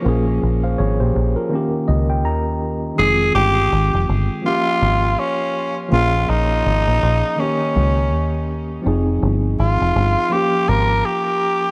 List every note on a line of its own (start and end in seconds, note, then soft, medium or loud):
0.02 0.38 A#1 loud
0.02 1.47 F3 medium
0.02 1.48 A#3 medium
0.07 1.49 C#4 medium
0.07 0.43 G#4 medium
0.43 0.75 A#1 medium
0.64 0.78 C5 medium
0.64 0.78 F5 medium
0.78 0.98 G#1 medium
0.78 0.99 G#4 medium
0.78 0.99 C#5 medium
1.00 1.14 A#1 medium
1.00 1.35 G4 medium
1.00 1.35 C5 medium
1.16 1.34 A#1 medium
1.36 1.72 F4 medium
1.36 1.71 A#4 medium
1.49 2.94 D#3 medium
1.49 2.95 A#3 medium
1.49 2.96 C#4 medium
1.55 2.97 G4 medium
1.88 2.25 C#2 medium
1.88 2.08 D#5 medium
2.10 2.24 G5 medium
2.25 2.91 D#2 medium
2.25 2.94 A#5 medium
2.95 3.31 F1 medium
2.95 4.41 D#3 medium
2.95 4.41 G#3 medium
2.95 4.42 C4 medium
2.95 3.32 G#4 loud
3.01 3.07 D#4 medium
3.08 4.47 F4 medium
3.35 3.68 G1 medium
3.35 4.04 G4 loud
3.72 3.91 G#1 medium
3.94 4.07 F1 medium
4.09 4.28 G1 medium
4.42 5.87 F3 medium
4.42 5.88 A#3 medium
4.42 5.89 C#4 medium
4.42 5.21 F4 loud
4.48 5.90 G4 medium
4.82 5.15 G#1 medium
5.20 5.77 C#4 medium
5.88 6.25 A#1 loud
5.88 7.34 F3 medium
5.88 7.35 A#3 medium
5.92 7.36 C#4 medium
5.92 6.31 F4 loud
5.92 7.37 G#4 medium
6.29 6.61 A#1 medium
6.29 7.41 D#4 loud
6.66 6.85 G#1 medium
6.88 7.01 A#1 medium
7.03 7.22 A#1 medium
7.36 8.81 D#3 medium
7.36 8.82 A#3 medium
7.36 8.49 C#4 medium
7.40 8.83 C#4 medium
7.40 8.84 G4 medium
7.76 8.13 C#2 medium
8.13 8.78 D#2 medium
8.82 10.27 F3 medium
8.82 10.28 C4 medium
8.82 10.29 D#4 medium
8.86 9.18 F1 loud
8.86 10.30 G#4 medium
9.23 9.55 G1 medium
9.59 9.78 G#1 medium
9.59 10.34 F4 medium
9.81 9.94 F1 medium
9.96 10.15 G1 medium
10.29 11.71 F3 medium
10.29 11.71 A#3 medium
10.29 10.70 G4 loud
10.34 11.71 C#4 medium
10.34 11.71 G4 medium
10.69 11.01 G#1 medium
10.69 11.07 A#4 medium
11.05 11.71 G4 loud